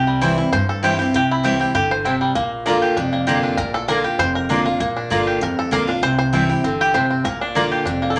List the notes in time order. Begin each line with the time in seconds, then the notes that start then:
Already playing: C2 C3 G4
0.07 G3
0.21 E3 G3 C4 E4 C5 G5
0.38 C4 E4
0.52 G2 C5
0.69 A4
0.83 E3 G3 C4 E4 G4 C5 G5
0.99 C4 E4 G4
1.13 C2 C3 G4
1.31 E4
1.43 E3 G3 C4 E4 G4 C5 G5
1.59 C4 E4 G4
1.74 G1 D3 G4
1.91 C5
2.04 C3 C4 E4 C5 G5
2.21 G3
2.35 A#1 A#2 A#3
2.65 D3 A#3 D4 F4 D5 A#5
2.82 G4
2.97 F1 F2 D4
3.13 A#3
3.27 D3 A#3 D4 F4 G4 D5 A#5
3.43 D4
3.57 A#1 A#2 A#4
3.74 A4
3.88 D3 A#3 D4 F4 A#4 D5 A#5
4.04 D4 F4 G4
4.19 F1 F2 C5
4.35 A#4
4.49 D3 A#3 D4 F4 D5 A#5
4.65 A#3 D4 F4
4.80 A#1 A#2 A#3
4.96 D4
5.10 G1 D3 A#3 D4 F4 D5 A#5
5.27 G4
5.41 A1 F2 A#4
5.59 A4
5.71 A#1 D3 A#3 D4 F4 A#4 D5 A#5
5.87 D4 F4
6.02 C2 C3 C5
6.18 C5
6.33 E3 G3 C4 E4 C5 G5
6.49 C4 E4 G4
6.64 G1 D3 C4
6.81 G4
6.94 C3 C4 E4 C5 G5
7.10 C4
7.24 A#1 A#2 A#4
7.41 D4
7.55 D3 A#3 D4 F4 D5 A#5
7.72 G4
7.86 F1 F2 D4
8.02 A#3
8.10 A4
8.16 D3 A#3